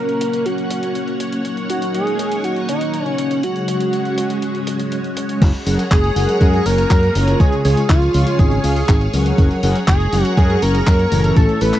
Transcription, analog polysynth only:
0.00 1.42 F#3 medium
0.00 1.42 A#3 medium
0.00 1.42 C#4 medium
0.00 1.42 A#4 medium
1.45 3.40 F#3 medium
1.45 3.40 C#4 medium
1.45 3.40 D#4 medium
1.45 3.40 A#4 medium
3.43 5.39 C#3 medium
3.43 5.39 F#3 medium
3.43 5.39 G#3 medium
3.43 5.39 C#4 medium
3.43 5.39 G#4 medium
5.66 5.83 F#3 loud
5.66 5.83 C#4 medium
5.66 5.83 G#4 medium
5.66 5.83 A#4 medium
5.66 5.83 F#5 loud
6.16 6.63 F#3 medium
6.16 6.63 C#4 medium
6.16 6.63 G#4 medium
6.16 6.63 A#4 medium
6.16 6.63 F#5 loud
6.66 6.82 F#3 medium
6.66 6.82 C#4 medium
6.66 6.82 G#4 medium
6.66 6.82 A#4 medium
6.66 6.82 A#5 medium
7.15 7.62 C#3 medium
7.15 7.62 G#3 medium
7.15 7.62 C#4 medium
7.15 7.62 F4 medium
7.15 7.62 C#5 medium
7.65 7.81 C#3 loud
7.65 7.81 G#3 medium
7.65 7.81 C#4 medium
7.65 7.81 F4 medium
7.65 7.81 C#5 loud
8.14 8.61 C#3 medium
8.14 8.61 G#3 medium
8.14 8.61 C#4 medium
8.14 8.61 F4 medium
8.14 8.61 C#5 medium
8.64 8.80 C#3 medium
8.64 8.80 G#3 medium
8.64 8.80 C#4 medium
8.64 8.80 F4 medium
8.64 8.80 F5 medium
9.14 9.60 F#3 medium
9.14 9.60 C#4 medium
9.14 9.60 G#4 medium
9.14 9.60 A#4 medium
9.14 9.60 F#5 medium
9.63 9.79 F#3 medium
9.63 9.79 C#4 medium
9.63 9.79 G#4 medium
9.63 9.79 A#4 medium
9.63 9.79 F#5 loud
10.13 10.59 F#3 medium
10.13 10.59 C#4 medium
10.13 10.59 G#4 medium
10.13 10.59 A#4 medium
10.13 10.59 F#5 medium
10.62 10.78 F#3 medium
10.62 10.78 C#4 medium
10.62 10.78 G#4 medium
10.62 10.78 A#4 medium
10.62 10.78 A#5 medium
11.12 11.58 A2 medium
11.12 11.58 E3 medium
11.12 11.58 A3 medium
11.12 11.58 C#4 medium
11.12 11.59 A4 medium
11.61 11.78 A2 medium
11.61 11.78 E3 medium
11.61 11.78 A3 medium
11.61 11.78 C#4 medium
11.61 11.78 A4 loud

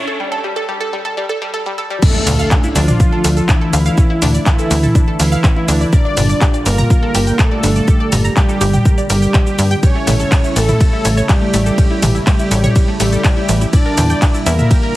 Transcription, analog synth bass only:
2.27 2.44 D2 loud
2.76 2.93 D2 loud
3.24 3.41 D2 medium
3.73 3.90 D2 medium
4.22 4.39 D2 loud
4.71 4.88 D2 loud
5.20 5.37 D2 medium
5.68 5.85 D2 medium
6.17 6.34 G1 loud
6.66 6.83 G1 loud
7.15 7.32 G1 medium
7.64 7.80 G1 medium
8.12 8.29 G1 loud
8.61 8.78 G1 loud
9.10 9.27 G1 medium
9.59 9.76 G2 medium
10.07 10.24 A1 loud
10.56 10.73 A1 loud
11.05 11.22 A1 medium
11.54 11.71 A1 medium
12.03 12.19 A1 loud
12.51 12.68 A1 loud
13.00 13.17 A1 medium
13.49 13.66 A1 medium
13.98 14.15 E2 loud
14.46 14.63 E2 loud

